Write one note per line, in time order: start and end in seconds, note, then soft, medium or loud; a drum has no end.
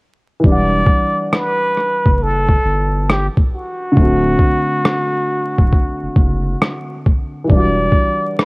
0.40 3.91 E3 medium
0.40 3.93 G3 medium
0.44 0.83 E1 medium
0.44 3.95 D4 medium
0.44 1.30 D5 loud
0.44 kick loud
0.52 3.97 F#5 medium
0.86 kick medium
1.33 2.24 B4 loud
1.33 cross-stick loud
1.77 cross-stick soft
2.06 2.58 F#1 medium
2.06 kick medium
2.23 3.10 A4 medium
2.49 kick medium
2.65 3.29 G1 loud
3.10 3.27 G4 medium
3.10 cross-stick loud
3.37 kick medium
3.55 7.03 F#4 medium
3.92 7.43 D3 medium
3.92 7.45 A3 medium
3.97 4.36 D1 medium
3.97 7.47 C4 medium
3.97 kick loud
4.03 7.49 F#4 medium
4.39 kick medium
4.86 cross-stick loud
5.59 5.72 D1 medium
5.59 kick medium
5.73 kick medium
6.03 6.09 F#1 soft
6.16 6.55 F#1 medium
6.16 kick loud
6.62 cross-stick loud
7.06 kick medium
7.44 8.45 E3 medium
7.44 8.45 G3 medium
7.50 7.89 E1 medium
7.50 8.45 D4 medium
7.50 8.35 D5 loud
7.50 kick loud
7.56 8.45 F#4 medium
7.92 kick medium
8.39 8.45 B4 loud
8.39 cross-stick medium